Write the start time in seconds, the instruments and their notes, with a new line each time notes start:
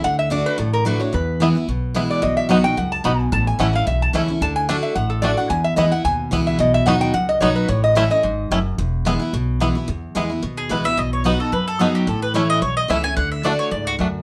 0.04 upright bass D2, steel-string acoustic guitar D3, resonator guitar played with a steel bar F#5
0.19 resonator guitar played with a steel bar E5
0.30 steel-string acoustic guitar D3 A3 D4 F#4, resonator guitar played with a steel bar D5
0.46 resonator guitar played with a steel bar B4
0.58 upright bass A1, steel-string acoustic guitar A2, resonator guitar played with a steel bar A4
0.73 resonator guitar played with a steel bar A#4
0.85 steel-string acoustic guitar D3 A3 D4 F#4, resonator guitar played with a steel bar B4
0.99 steel-string acoustic guitar D4 F#4, resonator guitar played with a steel bar C#5
1.13 steel-string acoustic guitar E2, upright bass E2, resonator guitar played with a steel bar B4
1.40 steel-string acoustic guitar E3 G#3 B3 E4, five-string banjo B3 E4
1.55 steel-string acoustic guitar B3 E4
1.68 upright bass B1, steel-string acoustic guitar B2
1.94 steel-string acoustic guitar E3 G#3 B3 E4, five-string banjo B3 E4
2.10 resonator guitar played with a steel bar D5
2.22 upright bass B1, steel-string acoustic guitar B2, resonator guitar played with a steel bar D#5
2.37 resonator guitar played with a steel bar E5
2.49 steel-string acoustic guitar F#3 B3 D#4 F#4, five-string banjo B3 D#4 F#4, resonator guitar played with a steel bar F#5
2.64 steel-string acoustic guitar D#4 F#4, resonator guitar played with a steel bar G5
2.77 upright bass C#2, steel-string acoustic guitar F#2, resonator guitar played with a steel bar F#5
2.92 resonator guitar played with a steel bar A5
3.04 upright bass B1, steel-string acoustic guitar B2, five-string banjo B3 D#4 F#4, resonator guitar played with a steel bar B5
3.20 resonator guitar played with a steel bar G#5
3.32 upright bass A1, steel-string acoustic guitar A2, resonator guitar played with a steel bar A5
3.47 resonator guitar played with a steel bar G#5
3.59 upright bass A1, steel-string acoustic guitar E3 A3 C#4 E4, five-string banjo A3 C#4 E4, resonator guitar played with a steel bar F#5
3.73 steel-string acoustic guitar C#4 E4, resonator guitar played with a steel bar F5
3.87 upright bass B1, steel-string acoustic guitar E2, resonator guitar played with a steel bar E5
4.02 resonator guitar played with a steel bar A5
4.13 upright bass C#2, steel-string acoustic guitar E3 A3 C#4 E4, five-string banjo A3 C#4 E4
4.28 steel-string acoustic guitar C#4 E4
4.41 upright bass D2, steel-string acoustic guitar D3, resonator guitar played with a steel bar A5
4.56 resonator guitar played with a steel bar G#5
4.69 steel-string acoustic guitar D3 A3 D4 F#4, five-string banjo A3 D4 F#4, resonator guitar played with a steel bar F#5
4.83 resonator guitar played with a steel bar E5
4.95 upright bass A1, steel-string acoustic guitar A2, resonator guitar played with a steel bar F#5
5.10 resonator guitar played with a steel bar A4
5.22 steel-string acoustic guitar D3 A3 D4 F#4, five-string banjo A3 D4 F#4, resonator guitar played with a steel bar D5
5.37 steel-string acoustic guitar D4 F#4, resonator guitar played with a steel bar F#5
5.50 steel-string acoustic guitar E2, upright bass E2, resonator guitar played with a steel bar G#5
5.64 resonator guitar played with a steel bar E5
5.76 upright bass E2, steel-string acoustic guitar E3 G#3 B3 E4, five-string banjo B3 E4, resonator guitar played with a steel bar D#5
5.91 steel-string acoustic guitar B3 E4, resonator guitar played with a steel bar F#5
6.05 upright bass D#2, steel-string acoustic guitar B2, resonator guitar played with a steel bar G#5
6.31 upright bass C#2, steel-string acoustic guitar E3 G#3 B3 E4, five-string banjo B3 E4
6.47 resonator guitar played with a steel bar E5
6.59 upright bass B1, steel-string acoustic guitar B2, resonator guitar played with a steel bar D#5
6.74 resonator guitar played with a steel bar E5
6.86 upright bass D#2, steel-string acoustic guitar F#3 B3 D#4 F#4, five-string banjo B3 D#4 F#4, resonator guitar played with a steel bar F#5
7.01 resonator guitar played with a steel bar G5
7.14 upright bass C#2, steel-string acoustic guitar F#2, resonator guitar played with a steel bar F#5
7.29 resonator guitar played with a steel bar D#5
7.41 upright bass B1, steel-string acoustic guitar F#3 B3 D#4 F#4, five-string banjo B3 D#4 F#4, resonator guitar played with a steel bar C#5
7.56 resonator guitar played with a steel bar B4
7.68 upright bass A1, steel-string acoustic guitar A2, resonator guitar played with a steel bar C#5
7.84 resonator guitar played with a steel bar D#5
7.95 steel-string acoustic guitar E3 A3 C#4 E4, five-string banjo A3 C#4 E4, resonator guitar played with a steel bar E5
8.10 steel-string acoustic guitar C#4 E4, resonator guitar played with a steel bar D#5
8.23 upright bass G#1, steel-string acoustic guitar G#2
8.51 upright bass F#1, steel-string acoustic guitar F#2, five-string banjo A3 C#4 E4
8.78 upright bass E1, steel-string acoustic guitar E2
9.05 steel-string acoustic guitar E3 G#3 B3 E4, five-string banjo B3 E4
9.19 steel-string acoustic guitar B3 E4
9.33 upright bass B1, steel-string acoustic guitar B2
9.60 steel-string acoustic guitar E3 G#3 B3 E4, five-string banjo B3 E4
9.75 steel-string acoustic guitar B3 E4
9.88 steel-string acoustic guitar E2, upright bass E2
10.15 upright bass E2, steel-string acoustic guitar E3 G#3 B3 E4, five-string banjo B3 E4
10.30 steel-string acoustic guitar B3 E4
10.43 upright bass D#2, steel-string acoustic guitar B2
10.57 mandolin G#4
10.69 upright bass C#2, steel-string acoustic guitar E3 G#3 B3 E4, five-string banjo B3 E4, mandolin B4
10.84 steel-string acoustic guitar B3 E4, mandolin E5
10.97 upright bass B1, steel-string acoustic guitar B2, mandolin D#5
11.13 mandolin C#5
11.24 steel-string acoustic guitar F#3 B3 D#4 F#4, five-string banjo B3 D#4 F#4, mandolin B4
11.40 steel-string acoustic guitar D#4 F#4, mandolin A4
11.52 steel-string acoustic guitar F#2, upright bass F#2, mandolin B4
11.68 mandolin A4
11.79 steel-string acoustic guitar F#3 B3 D#4 F#4, five-string banjo B3 D#4 F#4, mandolin G#4
11.95 mandolin G4
12.07 upright bass A1, steel-string acoustic guitar A2, mandolin A4
12.22 mandolin B4
12.34 steel-string acoustic guitar E3 A3 C#4 E4, five-string banjo A3 C#4 E4, mandolin C#5
12.50 mandolin D#5
12.62 upright bass B1, steel-string acoustic guitar E2, mandolin C#5
12.77 mandolin D#5
12.88 upright bass C#2, steel-string acoustic guitar E3 A3 C#4 E4, five-string banjo A3 C#4 E4, mandolin E5
13.03 steel-string acoustic guitar C#4 E4, mandolin G#5
13.17 upright bass D2, steel-string acoustic guitar D3, mandolin F#5
13.32 mandolin E5
13.43 steel-string acoustic guitar D3 A3 D4 F#4, five-string banjo A3 D4 F#4, mandolin D5
13.59 mandolin C#5
13.71 upright bass C#2, steel-string acoustic guitar G#2, mandolin D5
13.87 mandolin F#4
13.99 upright bass D2, steel-string acoustic guitar F#2, five-string banjo A3 D4 F#4